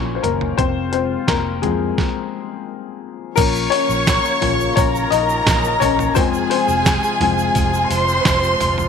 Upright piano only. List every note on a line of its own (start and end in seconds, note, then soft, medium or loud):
0.00 0.60 F3 soft
0.00 0.24 A#3 soft
0.00 0.60 C#4 medium
0.00 0.60 D#4 medium
0.00 0.60 C#5 loud
0.00 0.60 D#5 loud
0.15 0.23 C5 medium
0.22 0.56 A#3 medium
0.22 0.55 A#4 medium
0.58 0.91 C4 medium
0.58 0.90 C5 loud
0.92 1.26 C4 medium
0.92 1.29 C5 medium
1.27 1.61 A#3 medium
1.27 1.64 A#4 medium
1.62 2.09 F3 medium
1.62 2.64 G#3 medium
1.62 2.10 C4 medium
1.62 2.63 G#4 medium
3.36 4.38 F3 medium
3.36 3.70 A#3 medium
3.36 3.71 C#4 medium
3.36 3.72 A#4 loud
3.70 4.38 C#4 medium
3.70 4.37 C#5 loud
4.41 4.73 F3 soft
4.41 4.73 A#3 soft
4.41 4.73 C#4 medium
4.76 5.10 C#4 medium
4.76 5.09 C#5 loud
5.11 5.78 D#4 medium
5.11 5.77 D#5 loud
5.80 6.14 C#4 medium
5.80 6.13 C#5 loud
6.15 6.62 F3 medium
6.15 6.63 G#3 medium
6.15 6.51 C4 medium
6.15 6.23 C5 loud
6.50 7.20 C4 medium
6.50 7.86 C5 medium
7.21 7.52 F3 medium
7.21 7.53 G#3 soft
7.21 7.53 C4 medium